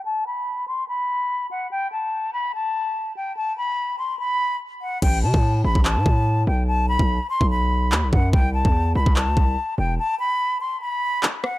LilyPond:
<<
  \new Staff \with { instrumentName = "Flute" } { \time 4/4 \key a \dorian \tempo 4 = 145 a''8 b''4 c'''8 b''4. fis''8 | g''8 a''4 b''8 a''4. g''8 | a''8 b''4 c'''8 b''4. fis''8 | g''8 a''4 b''8 a''4. g''8 |
a''8 b''4 c'''8 b''4. fis''8 | g''8 a''4 b''8 a''4. g''8 | a''8 b''4 c'''8 b''4. fis''8 | }
  \new Staff \with { instrumentName = "808-style bass" } { \clef bass \time 4/4 \key a \dorian r1 | r1 | r1 | a,,8 c16 a,8. a,,16 a,,8 a,16 a,4 b,,8~ |
b,,8. b,,8 r8 b,,4~ b,,16 dis,16 b,,16 fis,8 | c,8. e,8. c,16 c,8 d,16 c,8 r8 e,,8 | r1 | }
  \new DrumStaff \with { instrumentName = "Drums" } \drummode { \time 4/4 r4 r4 r4 r4 | r4 r4 r4 r4 | r4 r4 r4 r4 | <cymc bd>8. bd16 r8. bd16 hc8 bd8 r4 |
r8. bd16 r8. bd16 r4 hc8 bd8 | bd8. bd16 r8. bd16 hc8 bd8 r4 | r4 r4 r4 hc8 ss8 | }
>>